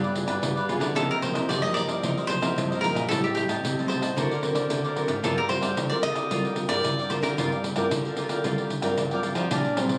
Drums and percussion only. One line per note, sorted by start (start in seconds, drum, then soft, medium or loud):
0.04 pandeiro soft
0.15 pandeiro medium
0.28 pandeiro medium
0.43 pandeiro medium
0.57 pandeiro soft
0.69 pandeiro medium
0.81 pandeiro medium
0.97 pandeiro medium
1.11 pandeiro soft
1.23 pandeiro medium
1.35 pandeiro medium
1.50 pandeiro medium
1.65 pandeiro soft
1.77 pandeiro medium
1.89 pandeiro medium
2.03 pandeiro medium
2.17 pandeiro soft
2.29 pandeiro medium
2.42 pandeiro medium
2.58 pandeiro medium
2.72 pandeiro soft
2.84 pandeiro medium
2.96 pandeiro medium
3.11 pandeiro medium
3.25 pandeiro soft
3.37 pandeiro medium
3.49 pandeiro medium
3.65 pandeiro medium
3.79 pandeiro soft
3.89 pandeiro medium
4.02 pandeiro medium
4.18 pandeiro medium
4.31 pandeiro soft
4.43 pandeiro medium
4.55 pandeiro medium
4.70 pandeiro medium
4.84 pandeiro soft
4.96 pandeiro medium
5.08 pandeiro medium
5.24 pandeiro medium
5.37 pandeiro soft
5.49 pandeiro medium
5.62 pandeiro medium
5.77 pandeiro medium
5.91 pandeiro soft
6.03 pandeiro medium
6.15 pandeiro medium
6.31 pandeiro medium
6.45 pandeiro soft
6.56 pandeiro medium
6.69 pandeiro medium
6.84 pandeiro medium
6.99 pandeiro soft
7.11 pandeiro medium
7.23 pandeiro medium
7.38 pandeiro medium
7.52 pandeiro soft
7.64 pandeiro medium
7.76 pandeiro medium
7.91 pandeiro medium
8.05 pandeiro soft
8.17 pandeiro medium
8.29 pandeiro medium
8.44 pandeiro medium
8.58 pandeiro soft
8.70 pandeiro medium
8.82 pandeiro medium
8.97 pandeiro medium
9.11 pandeiro soft
9.23 pandeiro medium
9.35 pandeiro medium
9.51 pandeiro medium
9.65 pandeiro soft
9.77 pandeiro medium
9.89 pandeiro medium